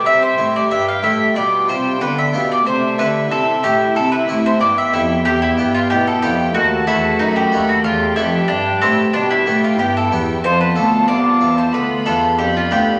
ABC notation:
X:1
M:4/4
L:1/16
Q:1/4=92
K:C
V:1 name="Violin section"
e4 g4 g8 | e8 e4 g4 | g4 g4 a4 b4 | g8 g8 |
a4 a4 b4 b4 |]
V:2 name="Mandolin"
e c2 d e f e2 d2 c2 B e2 d | c2 B2 A2 G2 A B2 c d e E2 | G E2 F G A G2 ^F2 E2 ^D G2 F | F2 E2 D2 C2 D E2 F G A z2 |
c B A2 d3 c B2 A2 G F G2 |]
V:3 name="Violin section"
G8 F4 D4- | D4 E12 | G4 E4 ^F8 | G8 G4 E4 |
F8 F4 D4 |]
V:4 name="Harpsichord"
z2 E4 E2 z2 [FG]4 [FG]2 | z2 [EG]4 [EG]2 z2 [EG]4 [EG]2 | z2 [B,G]4 [B,G]2 z2 [A,B,^F]4 [A,B,F]2 | z2 [B,G]4 [B,G]2 z2 [B,G]4 [B,G]2 |
z2 [CF]4 [CF]2 z2 [B,DF]4 [B,DF]2 |]
V:5 name="Harpsichord" clef=bass
C,2 A,,2 G,,2 A,,2 B,,2 C,2 D,2 B,,2 | C,2 D,2 C,2 A,,2 C,2 A,,2 G,,2 F,,2 | E,,2 G,,2 B,,2 F,,2 ^D,,2 E,,2 ^F,,2 D,,2 | E,,2 F,,2 G,,2 A,,2 B,,2 A,,2 G,,2 E,,2 |
F,,2 D,,2 C,,2 E,,2 D,,2 E,,2 F,,2 D,,2 |]
V:6 name="Viola section"
G,8 G,4 B,4 | A,4 G,4 C4 B,4- | B,8 A,8- | A,4 G,4 G,4 B,4- |
B,16 |]
V:7 name="Cello section" clef=bass
C,2 A,,2 G,,2 A,,2 B,,2 C,2 D,2 B,,2 | C,2 D,2 C,2 A,,2 C,2 A,,2 G,,2 F,,2 | E,,2 G,,2 B,,2 F,,2 ^D,,2 E,,2 ^F,,2 D,,2 | E,,2 F,,2 G,,2 A,,2 B,,2 A,,2 G,,2 E,,2 |
F,,2 D,,2 C,,2 E,,2 D,,2 E,,2 F,,2 D,,2 |]